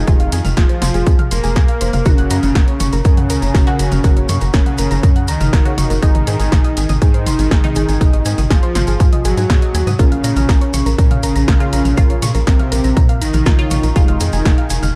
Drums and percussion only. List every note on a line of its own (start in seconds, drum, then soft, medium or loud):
0.07 kick loud
0.07 closed hi-hat medium
0.07 mid tom medium
0.07 maracas soft
0.20 closed hi-hat soft
0.32 closed hi-hat loud
0.32 maracas medium
0.45 closed hi-hat soft
0.45 mid tom loud
0.45 maracas medium
0.57 kick loud
0.57 snare loud
0.57 closed hi-hat medium
0.57 maracas soft
0.69 closed hi-hat soft
0.82 snare medium
0.82 closed hi-hat loud
0.82 mid tom medium
0.82 maracas medium
0.94 closed hi-hat soft
0.94 maracas medium
1.06 kick loud
1.06 closed hi-hat medium
1.06 maracas soft
1.19 closed hi-hat soft
1.19 mid tom loud
1.31 closed hi-hat loud
1.31 maracas medium
1.44 closed hi-hat soft
1.44 maracas medium
1.56 kick loud
1.56 snare loud
1.56 closed hi-hat medium
1.56 mid tom medium
1.56 maracas soft
1.68 closed hi-hat soft
1.81 closed hi-hat loud
1.81 maracas medium
1.93 closed hi-hat soft
1.93 mid tom loud
1.93 maracas medium
2.05 kick loud
2.05 closed hi-hat medium
2.05 mid tom medium
2.05 maracas soft
2.18 closed hi-hat soft
2.30 closed hi-hat loud
2.30 maracas medium
2.43 closed hi-hat soft
2.43 mid tom loud
2.43 maracas medium
2.55 kick loud
2.55 snare loud
2.55 closed hi-hat medium
2.55 maracas soft
2.68 closed hi-hat soft
2.80 closed hi-hat loud
2.80 mid tom loud
2.80 maracas medium
2.93 closed hi-hat soft
2.93 maracas soft
3.04 kick loud
3.04 closed hi-hat medium
3.04 maracas soft
3.17 closed hi-hat soft
3.17 mid tom medium
3.30 closed hi-hat loud
3.30 maracas medium
3.42 closed hi-hat soft
3.42 maracas medium
3.55 kick loud
3.55 snare loud
3.55 closed hi-hat medium
3.55 mid tom medium
3.55 maracas soft
3.67 closed hi-hat soft
3.79 closed hi-hat loud
3.79 maracas medium
3.92 closed hi-hat soft
3.92 mid tom loud
3.92 maracas medium
4.04 kick loud
4.04 closed hi-hat medium
4.04 maracas soft
4.17 closed hi-hat soft
4.29 closed hi-hat loud
4.29 mid tom loud
4.29 maracas medium
4.41 closed hi-hat soft
4.41 maracas medium
4.54 kick loud
4.54 snare loud
4.54 closed hi-hat medium
4.54 maracas soft
4.66 closed hi-hat soft
4.66 mid tom medium
4.78 closed hi-hat loud
4.78 maracas medium
4.91 closed hi-hat soft
4.91 maracas medium
5.03 kick loud
5.03 closed hi-hat medium
5.03 mid tom medium
5.03 maracas soft
5.16 closed hi-hat soft
5.28 closed hi-hat loud
5.28 maracas medium
5.41 closed hi-hat soft
5.41 mid tom loud
5.41 maracas medium
5.53 kick loud
5.53 snare loud
5.53 closed hi-hat medium
5.53 maracas soft
5.66 closed hi-hat soft
5.78 closed hi-hat loud
5.78 mid tom loud
5.78 maracas medium
5.90 closed hi-hat soft
5.90 maracas medium
6.03 kick loud
6.03 closed hi-hat medium
6.03 maracas soft
6.15 closed hi-hat medium
6.15 mid tom loud
6.27 closed hi-hat loud
6.27 maracas medium
6.40 closed hi-hat medium
6.40 maracas medium
6.52 kick loud
6.52 snare loud
6.52 closed hi-hat medium
6.52 mid tom loud
6.52 maracas soft
6.64 closed hi-hat soft
6.77 closed hi-hat loud
6.77 maracas medium
6.89 closed hi-hat soft
6.89 mid tom loud
6.89 maracas medium
7.02 kick loud
7.02 closed hi-hat medium
7.02 maracas soft
7.14 closed hi-hat soft
7.26 closed hi-hat loud
7.26 mid tom medium
7.26 maracas medium
7.39 closed hi-hat medium
7.39 maracas medium
7.51 kick loud
7.51 snare loud
7.51 closed hi-hat medium
7.51 maracas soft
7.64 closed hi-hat medium
7.64 mid tom loud
7.75 closed hi-hat loud
7.75 maracas medium
7.89 closed hi-hat soft
7.89 maracas medium
8.01 kick loud
8.01 closed hi-hat medium
8.01 mid tom medium
8.01 maracas soft
8.13 closed hi-hat soft
8.25 closed hi-hat loud
8.25 maracas medium
8.38 closed hi-hat soft
8.38 mid tom loud
8.38 maracas medium
8.50 kick loud
8.50 snare loud
8.50 closed hi-hat medium
8.50 maracas soft
8.63 closed hi-hat soft
8.75 snare medium
8.75 closed hi-hat loud
8.75 mid tom medium
8.75 maracas medium
8.87 closed hi-hat soft
8.87 maracas soft
9.00 kick loud
9.00 closed hi-hat medium
9.00 maracas soft
9.13 closed hi-hat soft
9.13 mid tom medium
9.25 closed hi-hat loud
9.25 maracas medium
9.37 closed hi-hat medium
9.37 maracas medium
9.50 kick loud
9.50 snare loud
9.50 closed hi-hat medium
9.50 mid tom medium
9.50 maracas soft
9.62 closed hi-hat medium
9.75 closed hi-hat loud
9.75 maracas medium
9.87 closed hi-hat soft
9.87 mid tom medium
9.87 maracas medium
9.99 kick loud
9.99 closed hi-hat medium
9.99 mid tom medium
9.99 maracas soft
10.12 closed hi-hat soft
10.24 closed hi-hat loud
10.24 maracas medium
10.36 closed hi-hat soft
10.36 mid tom medium
10.36 maracas medium
10.49 kick loud
10.49 snare loud
10.49 closed hi-hat medium
10.49 maracas soft
10.61 closed hi-hat soft
10.73 closed hi-hat loud
10.73 mid tom medium
10.73 maracas loud
10.86 closed hi-hat soft
10.86 maracas medium
10.98 kick loud
10.98 closed hi-hat medium
10.98 maracas soft
11.11 closed hi-hat soft
11.11 mid tom medium
11.23 closed hi-hat loud
11.23 maracas medium
11.36 closed hi-hat soft
11.36 maracas medium
11.48 kick loud
11.48 snare loud
11.48 closed hi-hat medium
11.48 mid tom medium
11.48 maracas soft
11.60 closed hi-hat soft
11.73 closed hi-hat loud
11.73 maracas loud
11.85 closed hi-hat soft
11.85 mid tom medium
11.85 maracas soft
11.97 kick loud
11.97 closed hi-hat medium
11.97 maracas soft
12.10 closed hi-hat soft
12.22 closed hi-hat loud
12.22 mid tom medium
12.22 maracas loud
12.35 closed hi-hat soft
12.35 maracas medium
12.47 kick loud
12.47 snare loud
12.47 closed hi-hat medium
12.47 maracas soft
12.60 closed hi-hat soft
12.60 mid tom medium
12.72 closed hi-hat loud
12.72 maracas medium
12.84 closed hi-hat soft
12.84 maracas medium
12.97 kick loud
12.97 closed hi-hat medium
12.97 mid tom medium
12.97 maracas soft
13.09 closed hi-hat soft
13.22 closed hi-hat loud
13.22 maracas loud
13.33 closed hi-hat soft
13.33 mid tom medium
13.33 maracas medium
13.46 kick loud
13.46 snare loud
13.46 closed hi-hat medium
13.46 maracas soft
13.59 closed hi-hat soft
13.71 closed hi-hat loud
13.71 mid tom medium
13.71 maracas medium
13.83 closed hi-hat soft
13.83 maracas medium
13.96 kick loud
13.96 closed hi-hat medium
13.96 maracas soft
14.08 closed hi-hat soft
14.08 mid tom medium
14.20 closed hi-hat loud
14.20 maracas medium
14.33 closed hi-hat soft
14.33 maracas medium
14.45 kick loud
14.45 snare loud
14.45 closed hi-hat medium
14.45 mid tom medium
14.45 maracas soft
14.58 closed hi-hat soft
14.70 closed hi-hat loud
14.70 maracas medium
14.83 closed hi-hat soft
14.83 mid tom medium
14.83 maracas medium